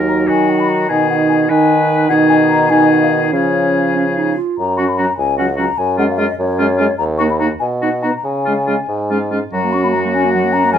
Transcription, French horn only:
0.00 0.85 F#3 soft
0.89 1.48 D#3 soft
1.50 2.09 D#3 soft
2.09 2.66 D#3 medium
2.71 3.34 D#3 medium
3.33 4.38 F3 soft
4.78 4.85 F#3 soft
4.99 5.06 F#3 soft
5.40 5.47 F#3 soft
5.59 5.66 F#3 soft
5.98 6.05 G#3 soft
6.17 6.25 G#3 soft
6.59 6.66 G#3 soft
6.79 6.87 G#3 medium
7.21 7.28 A#3 soft
7.41 7.48 A#3 soft
7.82 7.90 B3 soft
8.04 8.11 B3 soft
8.47 8.54 G#3 soft
8.68 8.75 G#3 soft
9.10 9.18 G#3 soft
9.30 9.38 G#3 soft
9.53 10.69 F#3 soft
10.74 10.78 G#3 medium

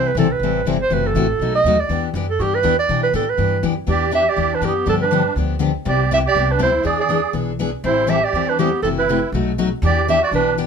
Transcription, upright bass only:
0.00 0.14 C2 medium
0.15 0.39 B1 medium
0.39 0.64 A1 medium
0.65 0.90 G1 medium
0.90 1.14 F#1 medium
1.15 1.39 A1 medium
1.39 1.63 B1 medium
1.64 1.88 D#2 medium
1.89 2.13 E2 medium
2.14 2.38 F#2 loud
2.39 2.63 G2 medium
2.64 2.88 E2 medium
2.89 3.13 B2 medium
3.14 3.37 A2 medium
3.38 3.62 G2 medium
3.63 3.87 F#2 medium
3.87 4.27 E2 medium
4.37 4.58 E2 medium
4.61 4.82 F#2 medium
4.87 5.26 G2 medium
5.36 5.75 D2 medium
5.86 6.25 C2 loud
6.34 6.56 C2 medium
6.60 6.81 D2 medium
6.84 7.24 E2 medium
7.34 7.73 B1 medium
7.84 8.23 A1 loud
8.33 8.73 E2 medium
8.82 9.22 F#1 medium
9.32 9.72 B1 medium
9.82 10.22 E2 loud
10.31 10.67 B1 medium

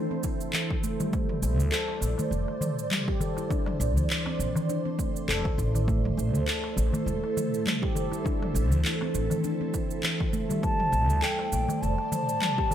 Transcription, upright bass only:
1.42 1.59 A#1 loud
1.59 1.68 D2 medium
2.01 2.13 A#1 medium
2.31 2.43 F1 medium
3.80 3.96 A#1 loud
3.96 4.06 D2 medium
4.39 4.51 A#1 medium
5.28 5.40 F1 medium
5.45 5.54 D2 medium
5.58 6.11 A1 loud
6.17 6.33 A1 medium
6.33 6.43 D2 medium
6.77 6.89 A1 medium
7.06 7.18 E1 medium
8.54 8.72 A1 medium
8.72 8.81 D2 medium
9.15 9.26 A1 medium
10.92 11.09 A#1 loud
11.09 11.18 D2 medium
11.52 11.64 A#1 medium
11.82 11.94 F1 medium

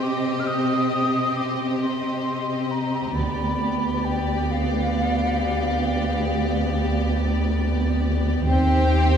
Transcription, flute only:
0.03 0.41 D6 soft
0.40 0.49 F6 soft
0.47 1.38 D#6 medium
1.37 1.62 D6 soft
1.82 2.73 C6 medium
2.71 3.17 A#5 medium
3.16 4.06 B5 medium
4.05 4.53 G5 medium
4.51 7.16 F5 medium
8.47 9.17 G5 medium

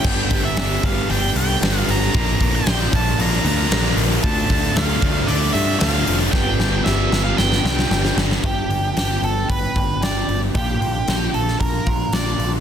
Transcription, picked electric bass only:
0.04 0.25 G1 loud
0.31 0.51 G1 medium
0.57 0.77 G1 medium
0.83 1.03 G1 medium
1.09 1.30 G1 medium
1.36 1.56 C2 medium
1.61 1.82 G1 medium
1.88 2.08 G1 medium
2.15 2.35 A#1 loud
2.41 2.61 A#1 medium
2.67 2.87 A#1 medium
2.93 3.13 A#1 medium
3.19 3.39 A#1 medium
3.44 3.65 D2 medium
3.70 3.91 A#1 loud
3.97 4.17 A#1 medium
4.24 4.44 D2 loud
4.50 4.70 D2 medium
4.76 4.96 D2 loud
5.02 5.22 D2 loud
5.28 5.49 D2 medium
5.55 5.75 G2 medium
5.82 6.02 D2 medium
6.08 6.28 F1 medium
6.33 6.53 G1 medium
6.59 6.80 G1 medium
6.86 7.06 G1 medium
7.12 7.32 G1 medium
7.38 7.58 G1 medium
7.65 7.85 C2 medium
7.91 8.11 G1 medium
8.17 8.37 G1 medium
8.44 8.65 G1 medium
8.69 8.90 G1 medium
8.95 9.17 G1 medium
9.22 9.43 G1 medium
9.49 9.70 G1 medium
9.76 9.97 G1 medium
10.01 10.22 G1 medium
10.28 10.49 G1 medium
10.55 10.76 A#1 medium
10.81 11.02 A#1 medium
11.08 11.29 A#1 medium
11.34 11.55 A#1 medium
11.60 11.81 A#1 medium
11.87 12.07 A#1 medium
12.13 12.34 A#1 medium
12.39 12.60 A#1 medium

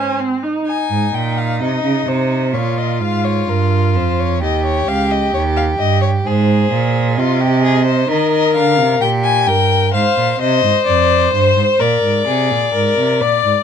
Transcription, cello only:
0.00 0.18 G#2 medium
0.90 1.12 G#2 medium
1.14 1.62 A#2 medium
1.60 1.83 C3 medium
1.83 2.06 C#3 medium
2.06 2.55 C3 medium
2.53 3.02 A#2 medium
3.01 3.47 G#2 medium
3.47 3.96 G2 medium
3.94 4.43 F2 medium
4.41 4.87 D#2 medium
4.87 5.33 C#2 medium
5.34 5.79 D#2 medium
5.79 6.25 G2 medium
6.25 6.71 G#2 loud
6.71 7.19 A#2 medium
7.17 8.08 C3 loud
8.09 8.57 D#3 medium
8.55 8.79 D3 medium
8.78 9.01 C3 medium
9.01 9.49 A#2 medium
9.47 9.93 G2 medium
9.94 10.02 G#2 medium
10.17 10.39 A#2 medium
10.40 10.63 C3 medium
10.64 10.72 G#2 medium
10.86 11.33 F2 medium
11.34 11.56 G2 medium
11.56 11.64 G#2 medium
11.80 12.03 A#2 medium
12.04 12.27 G#2 medium
12.27 12.52 C3 medium
12.51 12.74 A#2 medium
12.74 12.97 G#2 medium
12.98 13.22 C3 medium
13.21 13.44 A#2 medium
13.45 13.53 G#2 medium

